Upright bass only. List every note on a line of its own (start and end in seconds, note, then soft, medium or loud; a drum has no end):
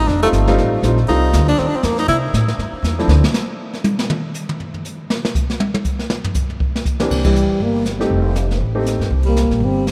0.07 0.32 F1 medium
0.32 0.57 G1 medium
0.58 0.82 A1 medium
0.83 1.07 A#1 medium
1.08 1.33 C2 medium
1.34 1.58 D2 medium
1.58 1.72 D#2 medium
1.73 muted upright bass stroke soft
1.83 2.07 F2 medium
2.08 2.33 C3 medium
2.33 2.57 A2 medium
2.58 2.72 G2 medium
2.73 muted upright bass stroke soft
2.82 3.07 E2 medium
3.08 3.22 D2 medium
7.10 7.47 C2 medium
7.49 muted upright bass stroke soft
7.60 8.08 G1 medium
8.10 8.58 F1 medium
8.61 8.98 A1 medium
8.99 9.10 G2 medium
9.10 9.48 C2 medium
9.50 9.60 A#1 medium
9.60 9.92 G1 medium